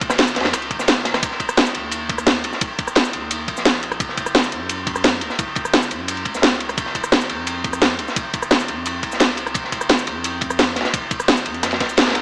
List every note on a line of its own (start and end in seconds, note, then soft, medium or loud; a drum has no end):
0.01 0.38 F1 loud
0.01 kick loud
0.01 closed hi-hat medium
0.01 ride medium
0.01 shaker soft
0.10 cross-stick soft
0.10 snare loud
0.10 ride medium
0.10 shaker medium
0.18 snare loud
0.18 closed hi-hat loud
0.18 ride medium
0.28 shaker medium
0.35 0.53 F2 loud
0.35 snare medium
0.35 closed hi-hat medium
0.35 ride medium
0.40 snare loud
0.40 ride medium
0.44 snare loud
0.44 snare soft
0.44 closed hi-hat soft
0.44 ride medium
0.53 0.72 C2 medium
0.53 cross-stick soft
0.53 closed hi-hat loud
0.53 ride medium
0.53 shaker medium
0.62 closed hi-hat soft
0.71 1.13 F1 medium
0.71 kick medium
0.71 closed hi-hat medium
0.71 ride medium
0.79 snare medium
0.79 shaker medium
0.88 snare loud
0.88 closed hi-hat loud
0.88 ride medium
0.88 shaker medium
0.96 snare medium
1.05 snare loud
1.05 closed hi-hat medium
1.05 ride medium
1.14 1.22 G#1 medium
1.14 cross-stick soft
1.14 snare loud
1.14 ride medium
1.14 shaker soft
1.23 1.38 D#1 loud
1.23 kick loud
1.23 closed hi-hat medium
1.23 ride medium
1.23 shaker medium
1.31 snare soft
1.40 1.76 D#1 loud
1.40 kick medium
1.40 closed hi-hat medium
1.40 ride medium
1.40 shaker soft
1.49 cross-stick soft
1.49 shaker medium
1.57 snare loud
1.57 closed hi-hat loud
1.57 ride medium
1.66 shaker medium
1.75 2.46 D#2 loud
1.75 closed hi-hat medium
1.75 ride medium
1.91 closed hi-hat loud
1.91 ride medium
1.91 shaker medium
2.09 kick loud
2.09 closed hi-hat medium
2.09 ride medium
2.18 cross-stick soft
2.18 shaker medium
2.26 snare loud
2.26 closed hi-hat medium
2.26 ride medium
2.26 shaker soft
2.44 2.52 A#1 loud
2.44 closed hi-hat medium
2.44 ride medium
2.53 snare medium
2.53 shaker soft
2.61 2.77 D#1 loud
2.61 kick loud
2.61 closed hi-hat medium
2.61 ride medium
2.61 shaker soft
2.79 3.15 D#1 loud
2.79 kick loud
2.79 closed hi-hat medium
2.79 ride medium
2.79 shaker soft
2.88 cross-stick soft
2.88 shaker medium
2.95 snare loud
2.95 closed hi-hat loud
2.95 ride loud
3.05 shaker soft
3.13 3.47 D#2 loud
3.13 closed hi-hat medium
3.13 ride medium
3.31 closed hi-hat loud
3.31 ride medium
3.31 shaker medium
3.48 3.99 A#1 medium
3.48 kick medium
3.48 closed hi-hat medium
3.48 ride medium
3.57 snare medium
3.57 shaker medium
3.65 snare loud
3.65 closed hi-hat medium
3.65 ride medium
3.65 shaker soft
3.74 snare medium
3.83 closed hi-hat medium
3.83 ride medium
3.92 cross-stick soft
3.92 ride soft
3.92 shaker soft
4.00 4.16 F#1 loud
4.00 kick loud
4.00 closed hi-hat medium
4.00 ride medium
4.00 shaker soft
4.09 snare soft
4.17 4.54 F#1 loud
4.17 kick medium
4.17 closed hi-hat medium
4.17 ride medium
4.17 shaker soft
4.26 cross-stick soft
4.26 shaker medium
4.35 snare loud
4.35 closed hi-hat loud
4.35 ride loud
4.44 shaker soft
4.52 5.23 F#2 loud
4.52 closed hi-hat medium
4.52 ride medium
4.69 closed hi-hat loud
4.69 ride medium
4.69 shaker medium
4.87 kick loud
4.87 closed hi-hat medium
4.87 ride medium
4.96 cross-stick soft
4.96 shaker medium
5.04 snare loud
5.04 closed hi-hat medium
5.04 ride medium
5.04 shaker soft
5.21 5.29 C#2 loud
5.21 closed hi-hat medium
5.21 ride medium
5.30 snare medium
5.30 shaker soft
5.39 5.55 F#1 loud
5.39 kick loud
5.39 closed hi-hat medium
5.39 ride medium
5.39 shaker soft
5.55 5.92 F#1 loud
5.55 kick loud
5.55 closed hi-hat medium
5.55 ride medium
5.55 shaker soft
5.65 cross-stick soft
5.65 shaker medium
5.74 snare loud
5.74 closed hi-hat medium
5.74 ride medium
5.82 shaker soft
5.91 6.24 F#2 loud
5.91 closed hi-hat medium
5.91 ride medium
5.91 shaker soft
6.08 closed hi-hat medium
6.08 ride medium
6.08 shaker medium
6.17 closed hi-hat soft
6.25 6.76 C#2 medium
6.25 kick medium
6.25 closed hi-hat medium
6.25 ride medium
6.35 snare medium
6.35 closed hi-hat soft
6.35 shaker medium
6.42 snare loud
6.42 closed hi-hat medium
6.42 ride medium
6.42 shaker soft
6.51 snare medium
6.60 closed hi-hat medium
6.60 ride medium
6.69 cross-stick soft
6.69 ride soft
6.69 shaker soft
6.77 6.93 F1 loud
6.77 kick loud
6.77 closed hi-hat medium
6.77 ride medium
6.77 shaker medium
6.86 snare soft
6.95 7.31 F1 loud
6.95 kick medium
6.95 closed hi-hat medium
6.95 ride medium
6.95 shaker soft
7.04 cross-stick soft
7.04 shaker medium
7.12 snare loud
7.12 closed hi-hat loud
7.12 ride loud
7.21 shaker medium
7.29 8.01 F2 loud
7.29 closed hi-hat medium
7.29 ride medium
7.47 closed hi-hat loud
7.47 ride loud
7.47 shaker medium
7.64 kick loud
7.64 closed hi-hat medium
7.64 ride medium
7.73 cross-stick soft
7.73 shaker medium
7.82 snare loud
7.82 closed hi-hat medium
7.82 ride medium
7.82 shaker medium
7.99 8.07 C2 loud
7.99 closed hi-hat medium
7.99 ride medium
8.08 snare medium
8.08 shaker soft
8.16 8.32 F1 loud
8.16 kick loud
8.16 closed hi-hat medium
8.16 ride medium
8.16 shaker medium
8.34 8.70 F1 loud
8.34 kick loud
8.34 closed hi-hat medium
8.34 ride medium
8.34 shaker soft
8.42 cross-stick soft
8.42 shaker medium
8.51 snare loud
8.51 closed hi-hat loud
8.51 ride loud
8.60 shaker medium
8.68 9.02 F2 loud
8.68 closed hi-hat medium
8.68 ride medium
8.86 closed hi-hat loud
8.86 ride medium
8.86 shaker medium
9.03 9.54 C2 medium
9.03 kick medium
9.03 closed hi-hat medium
9.03 ride medium
9.12 snare medium
9.12 shaker medium
9.20 snare loud
9.20 closed hi-hat medium
9.20 ride medium
9.20 shaker medium
9.29 snare medium
9.37 closed hi-hat medium
9.37 ride medium
9.46 cross-stick soft
9.46 ride soft
9.46 shaker soft
9.54 9.71 F1 loud
9.54 kick loud
9.54 closed hi-hat loud
9.54 ride medium
9.54 shaker medium
9.64 snare soft
9.72 10.09 F1 loud
9.72 kick medium
9.72 closed hi-hat medium
9.72 ride medium
9.72 shaker soft
9.81 cross-stick soft
9.81 shaker medium
9.89 snare loud
9.89 closed hi-hat loud
9.89 ride medium
9.98 shaker medium
10.07 10.78 F2 loud
10.07 closed hi-hat medium
10.07 ride medium
10.24 closed hi-hat loud
10.24 ride medium
10.24 shaker medium
10.41 kick loud
10.41 closed hi-hat medium
10.41 ride medium
10.50 cross-stick soft
10.50 shaker medium
10.59 snare loud
10.59 closed hi-hat loud
10.59 ride medium
10.59 shaker medium
10.76 10.84 C2 loud
10.76 snare medium
10.76 closed hi-hat medium
10.76 ride medium
10.81 snare medium
10.81 ride medium
10.85 snare loud
10.85 ride medium
10.85 shaker soft
10.94 11.09 F1 loud
10.94 kick loud
10.94 closed hi-hat loud
10.94 ride medium
10.94 shaker soft
11.11 11.47 F1 loud
11.11 kick loud
11.11 closed hi-hat medium
11.11 ride medium
11.11 shaker soft
11.20 cross-stick soft
11.20 shaker medium
11.28 snare loud
11.28 closed hi-hat loud
11.28 ride medium
11.37 shaker medium
11.46 11.79 F2 loud
11.46 closed hi-hat medium
11.46 ride medium
11.54 closed hi-hat soft
11.63 cross-stick soft
11.63 snare loud
11.63 closed hi-hat loud
11.63 ride medium
11.63 shaker medium
11.71 snare loud
11.71 closed hi-hat soft
11.71 ride medium
11.80 12.22 C2 medium
11.80 kick medium
11.80 snare loud
11.80 closed hi-hat medium
11.80 ride medium
11.89 shaker medium
11.97 snare loud
11.97 snare medium
11.97 closed hi-hat loud
11.97 ride medium
11.97 shaker medium
12.02 snare medium
12.02 ride medium
12.06 snare medium
12.06 ride medium
12.10 snare medium
12.10 ride medium
12.15 closed hi-hat medium
12.15 ride medium